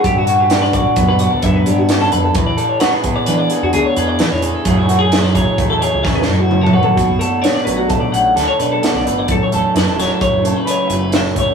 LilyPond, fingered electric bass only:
\new Staff \with { instrumentName = "Fingered electric bass" } { \clef bass \time 5/4 \key b \dorian \tempo 4 = 130 g,2 fis,8. d,16 fis,8 g,4 f,8 | e,8 r4. e8 r16 e,16 d,16 r16 e,8 e16 e,8 r16 | fis,2 e,8. cis,16 e,8 fis,4 fis,8 | b,,8 r4 a,,8 b,8 a,,8 d,16 r16 b,8 r16 b,,16 g,,8 |
fis,,16 r16 e,,16 r16 fis,16 e,,8 r8 fis,,8 r8. fis,,4. | }